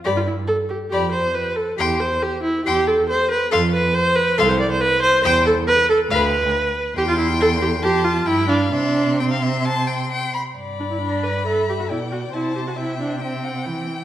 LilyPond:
<<
  \new Staff \with { instrumentName = "Violin" } { \time 4/4 \key c \major \tempo 4 = 138 b''8 r4. b''8 r4. | c'''8 r4. c'''8 r4. | c'''8 r4. c'''8 r4. | c'''8 r4. b''8 r4. |
c'''2 c'''4 b''4 | c'''4 c'''2~ c'''8 r8 | \key g \major b''2. g''4 | a''4 g''4 e''8 fis''8 g''4 | }
  \new Staff \with { instrumentName = "Violin" } { \time 4/4 \key c \major d''8 r4. d''8 r4. | g''8 r4. g''8 r4. | f''8 r4. f''8 r4. | g''8 r4. f''8 r4. |
g''2 a''4 g''8 f''8 | e''4 g''16 f''16 e''8 a''8 g''8 g''8 b''8 | \key g \major d''2 e''4 d''4 | c''4 e''4 g''2 | }
  \new Staff \with { instrumentName = "Viola" } { \time 4/4 \key c \major g'16 f'16 e'8 a'8 g'8 g'8 c''8 b'8 a'8 | g'8 c''8 g'8 e'8 g'8 a'8 c''8 b'8 | a'8 b'8 c''8 b'8 a'16 c''16 d''16 c''16 b'8 c''8 | c''8 a'8 b'8 a'8 b'2 |
g'16 f'16 e'8 a'8 g'8 g'8 f'8 e'8 d'8 | d'4 c'2~ c'8 r8 | \key g \major r8 d'16 e'16 d'8 b'8 a'8 g'16 fis'16 e'8 fis'8 | e'8 g'16 fis'16 e'8 d'8 c'4. r8 | }
  \new Staff \with { instrumentName = "Cello" } { \clef bass \time 4/4 \key c \major g,4 r4 f,4 r4 | e,4 r4 e,4 r4 | f,4 r4 c,4 r4 | e,4 r4 d,4 r4 |
e,2 f,4 g,4 | c2.~ c8 r8 | \key g \major g,2. b,4 | c2. e4 | }
>>